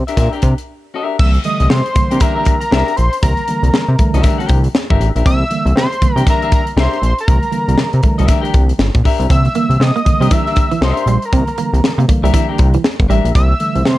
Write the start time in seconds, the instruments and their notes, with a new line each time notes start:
0.07 clean electric guitar D4 G4 A#4 E5, closed hi-hat
0.17 analog synth bass A#2, clean electric guitar D4 G4 A#4 E5, kick, snare, closed hi-hat
0.33 clean electric guitar D4 G4 A#4 G5, closed hi-hat
0.42 analog synth bass C3, kick, closed hi-hat
0.58 closed hi-hat
0.94 clean electric guitar D4 G4 A#4 E5
1.19 analog synth bass C2, tine electric piano D3 E3 G3 A#3, analog synth lead E6, kick, crash
1.34 closed hi-hat
1.44 tine electric piano D3 E3 G3 A3, analog synth lead D#6, closed hi-hat
1.60 analog synth bass C2, closed hi-hat
1.69 analog synth bass C3, analog synth lead C6, snare
1.86 closed hi-hat
1.95 analog synth bass C3, tine electric piano D3 E3 G3 A#3, kick, closed hi-hat
2.11 analog synth bass C3, clean electric guitar D4 G4 A#4 G5, closed hi-hat
2.20 clean electric guitar D4 G4 A#4 E5, analog synth lead A#5, kick, snare, closed hi-hat
2.35 clean electric guitar D4 G4 A#4 E5
2.45 kick, closed hi-hat
2.60 analog synth lead A#5, closed hi-hat
2.71 analog synth bass C2, clean electric guitar D4 G4 A#4 E5, snare
2.88 closed hi-hat
2.96 analog synth bass A#1, analog synth lead C6, closed hi-hat
3.13 closed hi-hat
3.22 analog synth bass C2, tine electric piano D3 E3 G3 A#3, analog synth lead A#5, kick, closed hi-hat
3.37 closed hi-hat
3.48 tine electric piano D3 E3 G3 A#3, closed hi-hat
3.63 analog synth bass C2, closed hi-hat
3.74 analog synth bass C3, snare
3.88 analog synth bass C3
3.99 tine electric piano D3 E3 G3 A3, kick, closed hi-hat
4.14 analog synth bass C2, clean electric guitar D4 G4 A#4 E5, closed hi-hat
4.24 clean electric guitar D4 G4 A#4 E5, kick, snare, closed hi-hat
4.38 clean electric guitar D4 G4 A#4 G5, closed hi-hat
4.49 analog synth bass C2, kick, closed hi-hat
4.64 closed hi-hat
4.75 snare
4.90 analog synth bass G1, clean electric guitar D4 G4 A#4 E5, kick
5.00 analog synth bass A1, closed hi-hat
5.16 analog synth bass A#1, clean electric guitar D4 G4 A#4 E5, closed hi-hat
5.25 analog synth bass C2, tine electric piano D3 E3 G3 A#3, analog synth lead E6, kick, closed hi-hat
5.51 tine electric piano D3 E3 G3 A#3, closed hi-hat
5.65 analog synth bass C2, closed hi-hat
5.76 analog synth bass C3, analog synth lead C6, snare
5.92 closed hi-hat
6.02 analog synth bass C3, tine electric piano D3 E3 G3 A#3, kick, closed hi-hat
6.16 analog synth bass C3, clean electric guitar D4 G4 A#4 G5, closed hi-hat
6.27 clean electric guitar D4 G4 A#4 E5, analog synth lead A#5, kick, snare, closed hi-hat
6.42 clean electric guitar D4 G4 A#4 E5, closed hi-hat
6.52 analog synth lead A#5, kick, closed hi-hat
6.67 closed hi-hat
6.76 analog synth bass C2, clean electric guitar D4 G4 A#4 E5, analog synth lead C6, snare
6.93 closed hi-hat
7.02 analog synth bass A#1, analog synth lead C6, closed hi-hat
7.18 analog synth lead A#5, closed hi-hat
7.28 analog synth bass C2, tine electric piano D3 E3 G3 A3, kick, closed hi-hat
7.43 closed hi-hat
7.52 tine electric piano D3 E3 G3 A#3, closed hi-hat
7.68 analog synth bass C2, closed hi-hat
7.78 analog synth bass C3, snare
7.93 analog synth bass C3, closed hi-hat
8.03 tine electric piano D3 E3 G3 A3, kick, closed hi-hat
8.18 analog synth bass C2, clean electric guitar D4 G4 A#4 E5, closed hi-hat
8.28 clean electric guitar D4 G4 A#4 E5, kick, snare, closed hi-hat
8.41 clean electric guitar D4 G4 A#4 G5, closed hi-hat
8.54 analog synth bass C2, kick, closed hi-hat
8.69 closed hi-hat
8.79 analog synth bass G1, snare
8.95 analog synth bass A#1, kick, closed hi-hat
9.04 clean electric guitar D4 G4 A#4 E5, kick, open hi-hat
9.19 analog synth bass C2, closed hi-hat
9.30 analog synth bass C2, tine electric piano D3 E3 G3 A#3, clean electric guitar C4, analog synth lead E6, kick, closed hi-hat
9.45 muted clean electric guitar stroke, closed hi-hat
9.55 tine electric piano D3 E3 G3 A#3, clean electric guitar A#3, closed hi-hat
9.69 analog synth bass C2, closed hi-hat
9.80 analog synth bass C3, analog synth lead D#6, snare
9.96 clean electric guitar A#3, closed hi-hat
10.05 analog synth bass C3, tine electric piano D3 D#3 G3 A#3, muted clean electric guitar stroke, kick, closed hi-hat
10.12 tine electric piano E3
10.20 analog synth bass C3, clean electric guitar G3 D4 G4 A#4 G5, closed hi-hat
10.31 clean electric guitar E3 D4 G4 A#4 E5, analog synth lead E6, kick, snare, closed hi-hat
10.46 clean electric guitar D4 G4 A#4 E5, closed hi-hat
10.56 muted clean electric guitar stroke, kick, closed hi-hat
10.71 clean electric guitar E3, closed hi-hat
10.81 analog synth bass C2, clean electric guitar D4 G4 A#4 E5, analog synth lead C6, snare
10.97 closed hi-hat
11.06 analog synth bass A#1, clean electric guitar G3, closed hi-hat
11.22 analog synth lead A#5, closed hi-hat
11.33 analog synth bass C2, tine electric piano D3 E3 G3 A#3, clean electric guitar C4, kick, closed hi-hat
11.47 muted clean electric guitar stroke, closed hi-hat
11.58 tine electric piano D3 E3 G3 A#3, clean electric guitar A#3, closed hi-hat
11.73 analog synth bass C2, closed hi-hat
11.84 analog synth bass C3, snare
11.98 analog synth bass C3, clean electric guitar A#3, closed hi-hat
12.08 tine electric piano D3 E3 G3 A#3, muted clean electric guitar stroke, kick, closed hi-hat
12.23 analog synth bass C2, clean electric guitar G3 D4 G4 A#4 E5, closed hi-hat
12.33 clean electric guitar E3 D4 G4 A#4 E5, kick, snare, closed hi-hat
12.49 clean electric guitar D4 G4 A#4 G5
12.58 analog synth bass C2, muted clean electric guitar stroke, kick, closed hi-hat
12.74 clean electric guitar E3, closed hi-hat
12.84 snare
13.00 analog synth bass G1, kick, closed hi-hat
13.08 analog synth bass A1, clean electric guitar G3 D4 G4 A#4 E5, closed hi-hat
13.24 analog synth bass A#1, closed hi-hat
13.35 analog synth bass C2, tine electric piano D3 E3 G3 A#3, analog synth lead E6, kick, closed hi-hat
13.60 tine electric piano D3 E3 G3 A3, closed hi-hat
13.75 analog synth bass C2, closed hi-hat
13.85 analog synth bass C3, analog synth lead C6, snare